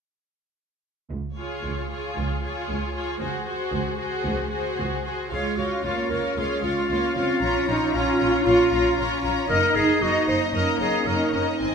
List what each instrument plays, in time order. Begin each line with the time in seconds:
1.10 double bass section C#2, cello section C#2
1.37 viola section F4, violin section G#4 C#5
1.64 cello section C#2, double bass section C#2
1.91 viola section F4, violin section G#4 C#5
2.16 double bass section C#2, cello section C#2
2.43 viola section F4, violin section G#4 C#5
2.68 double bass section C#2, cello section C#2
2.95 viola section F4, violin section G#4 C#5
3.21 double bass section C#2, cello section C#2, viola section F#4, violin section G#4 C5
3.47 viola section F#4, violin section G#4 C5
3.72 double bass section C#2, cello section C#2
3.99 viola section F#4, violin section G#4 C5
4.25 double bass section C#2, cello section C#2
4.51 viola section F#4, violin section G#4 C5
4.77 double bass section C#2, cello section C#2
5.05 viola section F#4, violin section G#4 C5
5.32 double bass section C#2, cello section G#3, french horn section C#4 F4, viola section F4, clarinet G#4, violin section C#5 F5
5.57 double bass section C#2, viola section F4, clarinet F#4, violin section C#5 F5
5.84 double bass section C#2, cello section A#3, clarinet F4, viola section F4, violin section C#5 F5
6.10 double bass section C#2, viola section F4, clarinet A#4, violin section C#5 F5
6.37 double bass section C#2, cello section G#3, viola section F4, clarinet G#4, violin section C#5 F5
6.63 double bass section C#2, clarinet F4, viola section F4, violin section C#5 F5
6.89 double bass section C#2, cello section A#3, viola section F4, violin section C#5 F5
7.16 double bass section C#2, cello section C4, clarinet F4, viola section F4, violin section C#5 F5
7.42 double bass section A#1, cello section C#4, viola section F4, violin section C#5 A#5
7.68 double bass section A#1, clarinet D#4, cello section D#4, viola section F4, violin section C#5 A#5
7.94 double bass section A#1, clarinet C#4, viola section F4, cello section F4, violin section C#5 A#5
8.20 double bass section A#1, viola section F4, violin section C#5 A#5
8.46 double bass section A#1, clarinet F4, viola section F4, violin section C#5 A#5
8.72 double bass section A#1, viola section F4, violin section C#5 A#5
8.98 double bass section A#1, cello section C#4, viola section F4, violin section C#5 A#5
9.24 double bass section A#1, viola section F4, violin section C#5 A#5
9.49 double bass section F#1, french horn section A#3 D#4, cello section D#4, viola section D#4, clarinet A#4, violin section D#5 A#5
9.75 double bass section F#1, viola section D#4, clarinet G#4, violin section D#5 A#5
10.02 double bass section F#1, cello section D#4, viola section D#4, clarinet F#4, violin section D#5 A#5
10.28 double bass section F#1, viola section D#4, clarinet C5, violin section D#5 A#5
10.54 double bass section F#1, cello section C#4, viola section D#4, clarinet A#4, violin section D#5 A#5
10.80 double bass section F#1, viola section D#4, clarinet G#4, violin section D#5 A#5
11.07 double bass section F#1, viola section D#4, clarinet A#4, violin section D#5 A#5
11.34 double bass section F#1, viola section D#4, clarinet A#4, violin section D#5 A#5
11.61 double bass section G#1, cello section C4, french horn section C4, viola section C4, clarinet D#4, violin section D#5 G#5